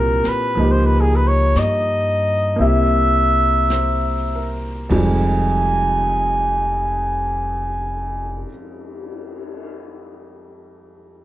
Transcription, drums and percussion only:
0, 0, Header, 1, 3, 480
1, 0, Start_track
1, 0, Key_signature, -4, "minor"
1, 0, Tempo, 977199
1, 285, Time_signature, 4, 2, 24, 8
1, 771, Tempo, 1039861
1, 1251, Tempo, 1109057
1, 1731, Tempo, 1200000
1, 2211, Tempo, 1242236
1, 4656, End_track
2, 0, Start_track
2, 0, Title_t, "Cymbal swell"
2, 2537, Note_on_c, 9, 59, 31
2, 4039, Note_off_c, 9, 59, 0
2, 4656, End_track
3, 0, Start_track
3, 0, Title_t, "Drums"
3, 117, Note_on_c, 9, 38, 22
3, 167, Note_off_c, 9, 38, 0
3, 279, Note_on_c, 9, 25, 27
3, 765, Note_on_c, 9, 38, 37
3, 765, Note_on_c, 9, 44, 41
3, 811, Note_off_c, 9, 38, 0
3, 811, Note_off_c, 9, 44, 0
3, 1245, Note_off_c, 9, 25, 0
3, 1245, Note_on_c, 9, 25, 31
3, 1723, Note_on_c, 9, 38, 35
3, 1723, Note_on_c, 9, 44, 41
3, 1763, Note_off_c, 9, 38, 0
3, 1763, Note_off_c, 9, 44, 0
3, 2205, Note_on_c, 9, 51, 45
3, 2206, Note_on_c, 9, 36, 39
3, 2244, Note_off_c, 9, 51, 0
3, 2245, Note_off_c, 9, 36, 0
3, 2601, Note_off_c, 9, 25, 0
3, 4656, End_track
0, 0, End_of_file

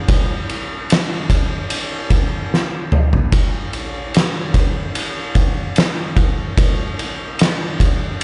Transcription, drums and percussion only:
0, 0, Header, 1, 2, 480
1, 0, Start_track
1, 0, Tempo, 813008
1, 49, Time_signature, 4, 2, 24, 8
1, 4864, End_track
2, 0, Start_track
2, 0, Title_t, "Drums"
2, 49, Note_on_c, 9, 51, 89
2, 51, Note_on_c, 9, 36, 109
2, 108, Note_off_c, 9, 51, 0
2, 110, Note_off_c, 9, 36, 0
2, 292, Note_on_c, 9, 51, 67
2, 351, Note_off_c, 9, 51, 0
2, 531, Note_on_c, 9, 51, 101
2, 545, Note_on_c, 9, 38, 107
2, 590, Note_off_c, 9, 51, 0
2, 605, Note_off_c, 9, 38, 0
2, 766, Note_on_c, 9, 36, 80
2, 768, Note_on_c, 9, 51, 74
2, 825, Note_off_c, 9, 36, 0
2, 827, Note_off_c, 9, 51, 0
2, 1004, Note_on_c, 9, 51, 92
2, 1063, Note_off_c, 9, 51, 0
2, 1242, Note_on_c, 9, 51, 67
2, 1243, Note_on_c, 9, 36, 79
2, 1301, Note_off_c, 9, 51, 0
2, 1302, Note_off_c, 9, 36, 0
2, 1499, Note_on_c, 9, 38, 61
2, 1558, Note_off_c, 9, 38, 0
2, 1724, Note_on_c, 9, 45, 87
2, 1783, Note_off_c, 9, 45, 0
2, 1848, Note_on_c, 9, 43, 84
2, 1907, Note_off_c, 9, 43, 0
2, 1963, Note_on_c, 9, 36, 107
2, 1964, Note_on_c, 9, 51, 93
2, 2022, Note_off_c, 9, 36, 0
2, 2023, Note_off_c, 9, 51, 0
2, 2203, Note_on_c, 9, 51, 69
2, 2262, Note_off_c, 9, 51, 0
2, 2446, Note_on_c, 9, 51, 89
2, 2460, Note_on_c, 9, 38, 108
2, 2505, Note_off_c, 9, 51, 0
2, 2519, Note_off_c, 9, 38, 0
2, 2682, Note_on_c, 9, 36, 83
2, 2683, Note_on_c, 9, 51, 67
2, 2741, Note_off_c, 9, 36, 0
2, 2742, Note_off_c, 9, 51, 0
2, 2923, Note_on_c, 9, 51, 85
2, 2983, Note_off_c, 9, 51, 0
2, 3159, Note_on_c, 9, 51, 66
2, 3161, Note_on_c, 9, 36, 82
2, 3218, Note_off_c, 9, 51, 0
2, 3220, Note_off_c, 9, 36, 0
2, 3400, Note_on_c, 9, 51, 88
2, 3414, Note_on_c, 9, 38, 112
2, 3459, Note_off_c, 9, 51, 0
2, 3473, Note_off_c, 9, 38, 0
2, 3640, Note_on_c, 9, 36, 86
2, 3641, Note_on_c, 9, 51, 62
2, 3699, Note_off_c, 9, 36, 0
2, 3700, Note_off_c, 9, 51, 0
2, 3882, Note_on_c, 9, 36, 115
2, 3885, Note_on_c, 9, 51, 82
2, 3941, Note_off_c, 9, 36, 0
2, 3944, Note_off_c, 9, 51, 0
2, 4128, Note_on_c, 9, 51, 64
2, 4187, Note_off_c, 9, 51, 0
2, 4364, Note_on_c, 9, 51, 97
2, 4378, Note_on_c, 9, 38, 113
2, 4423, Note_off_c, 9, 51, 0
2, 4437, Note_off_c, 9, 38, 0
2, 4606, Note_on_c, 9, 36, 85
2, 4609, Note_on_c, 9, 51, 66
2, 4665, Note_off_c, 9, 36, 0
2, 4668, Note_off_c, 9, 51, 0
2, 4864, End_track
0, 0, End_of_file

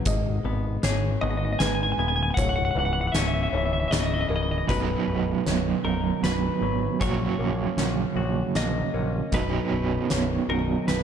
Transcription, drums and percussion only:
0, 0, Header, 1, 2, 480
1, 0, Start_track
1, 0, Key_signature, 5, "major"
1, 0, Tempo, 773196
1, 40, Time_signature, 3, 2, 24, 8
1, 6847, End_track
2, 0, Start_track
2, 0, Title_t, "Drums"
2, 34, Note_on_c, 9, 42, 63
2, 37, Note_on_c, 9, 36, 98
2, 96, Note_off_c, 9, 42, 0
2, 100, Note_off_c, 9, 36, 0
2, 516, Note_on_c, 9, 38, 79
2, 516, Note_on_c, 9, 42, 62
2, 578, Note_off_c, 9, 38, 0
2, 578, Note_off_c, 9, 42, 0
2, 994, Note_on_c, 9, 38, 77
2, 994, Note_on_c, 9, 42, 62
2, 1056, Note_off_c, 9, 38, 0
2, 1056, Note_off_c, 9, 42, 0
2, 1473, Note_on_c, 9, 36, 101
2, 1474, Note_on_c, 9, 42, 63
2, 1535, Note_off_c, 9, 36, 0
2, 1536, Note_off_c, 9, 42, 0
2, 1953, Note_on_c, 9, 38, 79
2, 1953, Note_on_c, 9, 42, 69
2, 2015, Note_off_c, 9, 38, 0
2, 2015, Note_off_c, 9, 42, 0
2, 2437, Note_on_c, 9, 38, 80
2, 2437, Note_on_c, 9, 42, 70
2, 2499, Note_off_c, 9, 38, 0
2, 2499, Note_off_c, 9, 42, 0
2, 2912, Note_on_c, 9, 36, 78
2, 2913, Note_on_c, 9, 42, 47
2, 2974, Note_off_c, 9, 36, 0
2, 2975, Note_off_c, 9, 42, 0
2, 3393, Note_on_c, 9, 38, 64
2, 3393, Note_on_c, 9, 42, 44
2, 3455, Note_off_c, 9, 38, 0
2, 3455, Note_off_c, 9, 42, 0
2, 3873, Note_on_c, 9, 38, 63
2, 3873, Note_on_c, 9, 42, 45
2, 3935, Note_off_c, 9, 38, 0
2, 3935, Note_off_c, 9, 42, 0
2, 4350, Note_on_c, 9, 42, 45
2, 4352, Note_on_c, 9, 36, 79
2, 4412, Note_off_c, 9, 42, 0
2, 4414, Note_off_c, 9, 36, 0
2, 4830, Note_on_c, 9, 38, 67
2, 4830, Note_on_c, 9, 42, 49
2, 4892, Note_off_c, 9, 38, 0
2, 4892, Note_off_c, 9, 42, 0
2, 5310, Note_on_c, 9, 38, 66
2, 5310, Note_on_c, 9, 42, 51
2, 5372, Note_off_c, 9, 38, 0
2, 5372, Note_off_c, 9, 42, 0
2, 5787, Note_on_c, 9, 42, 50
2, 5790, Note_on_c, 9, 36, 83
2, 5849, Note_off_c, 9, 42, 0
2, 5853, Note_off_c, 9, 36, 0
2, 6271, Note_on_c, 9, 38, 66
2, 6271, Note_on_c, 9, 42, 50
2, 6333, Note_off_c, 9, 38, 0
2, 6333, Note_off_c, 9, 42, 0
2, 6754, Note_on_c, 9, 38, 66
2, 6754, Note_on_c, 9, 42, 49
2, 6816, Note_off_c, 9, 38, 0
2, 6816, Note_off_c, 9, 42, 0
2, 6847, End_track
0, 0, End_of_file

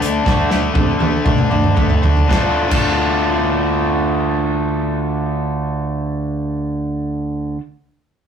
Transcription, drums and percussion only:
0, 0, Header, 1, 2, 480
1, 0, Start_track
1, 0, Key_signature, -1, "minor"
1, 0, Tempo, 501672
1, 248, Time_signature, 4, 2, 24, 8
1, 1697, Tempo, 544465
1, 7428, End_track
2, 0, Start_track
2, 0, Title_t, "Drums"
2, 19, Note_on_c, 9, 42, 72
2, 115, Note_off_c, 9, 42, 0
2, 251, Note_on_c, 9, 36, 98
2, 254, Note_on_c, 9, 38, 51
2, 347, Note_off_c, 9, 36, 0
2, 349, Note_off_c, 9, 38, 0
2, 485, Note_on_c, 9, 38, 52
2, 581, Note_off_c, 9, 38, 0
2, 720, Note_on_c, 9, 48, 60
2, 721, Note_on_c, 9, 36, 102
2, 815, Note_off_c, 9, 48, 0
2, 816, Note_off_c, 9, 36, 0
2, 960, Note_on_c, 9, 48, 67
2, 1055, Note_off_c, 9, 48, 0
2, 1203, Note_on_c, 9, 36, 99
2, 1205, Note_on_c, 9, 47, 70
2, 1299, Note_off_c, 9, 36, 0
2, 1301, Note_off_c, 9, 47, 0
2, 1323, Note_on_c, 9, 47, 61
2, 1419, Note_off_c, 9, 47, 0
2, 1448, Note_on_c, 9, 45, 70
2, 1544, Note_off_c, 9, 45, 0
2, 1568, Note_on_c, 9, 45, 62
2, 1664, Note_off_c, 9, 45, 0
2, 1691, Note_on_c, 9, 45, 78
2, 1695, Note_on_c, 9, 36, 92
2, 1780, Note_off_c, 9, 45, 0
2, 1783, Note_off_c, 9, 36, 0
2, 1808, Note_on_c, 9, 43, 71
2, 1896, Note_off_c, 9, 43, 0
2, 1927, Note_on_c, 9, 43, 75
2, 2015, Note_off_c, 9, 43, 0
2, 2047, Note_on_c, 9, 43, 75
2, 2136, Note_off_c, 9, 43, 0
2, 2166, Note_on_c, 9, 36, 96
2, 2170, Note_on_c, 9, 38, 72
2, 2255, Note_off_c, 9, 36, 0
2, 2258, Note_off_c, 9, 38, 0
2, 2525, Note_on_c, 9, 49, 80
2, 2527, Note_on_c, 9, 36, 87
2, 2613, Note_off_c, 9, 49, 0
2, 2616, Note_off_c, 9, 36, 0
2, 7428, End_track
0, 0, End_of_file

